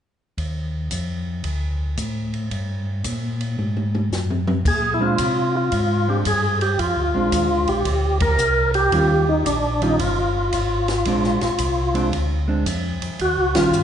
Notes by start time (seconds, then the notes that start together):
0.37 D#2, kick, ride
0.91 F2, kick, hi-hat pedal, ride
1.44 D2, kick, ride
1.97 A2, kick, hi-hat pedal, ride
2.33 ride
2.51 G2, kick, ride
3.04 A#2, kick, hi-hat pedal, ride
3.41 ride
3.58 G#2, high tom
3.77 high tom
3.95 high tom
4.11 F#2, snare, hi-hat pedal
4.30 mid tom
4.47 mid tom
4.65 A#2 G#4, kick, crash
4.94 E4
5.00 G#3 C4 D4 F4
5.18 C3, kick, hi-hat pedal, ride
5.57 F4
5.72 G#2, kick, ride
6.08 G#3 C4 D4 G4
6.25 G2 G#4, kick, hi-hat pedal, ride
6.61 G4, ride
6.79 F2 F4, kick, ride
6.96 D2
7.14 A#1 G#3 C4 D4
7.32 D#2, kick, hi-hat pedal, ride
7.49 D2
7.66 A#1 G4, ride
7.85 D2, kick, ride
8.20 A#4, kick, ride
8.38 C2, hi-hat pedal
8.74 G4, ride
8.92 D#2 D#3 G3 C#4 F4, kick, ride
9.29 D#4
9.46 A#1 D4, kick, hi-hat pedal, ride
9.82 D#3 G3 C#4 D#4 F4, ride
9.99 G1 F4, kick, ride
10.52 G#1, kick, hi-hat pedal, ride
10.88 snare, ride
11.05 A#1 G#3 C4 D4, kick, ride
11.24 snare
11.41 A#1, snare, ride
11.58 C2, kick, hi-hat pedal, ride
11.94 G#3 C4 D4, ride
12.12 D2, kick, ride
12.48 G#3 C4 D4
12.66 F2, kick, hi-hat pedal, ride
13.02 F2, ride
13.19 D#2 F#4, kick, ride
13.37 C#2
13.55 A#1 D#3 G3 C#4 F4, snare, ride
13.73 G2, hi-hat pedal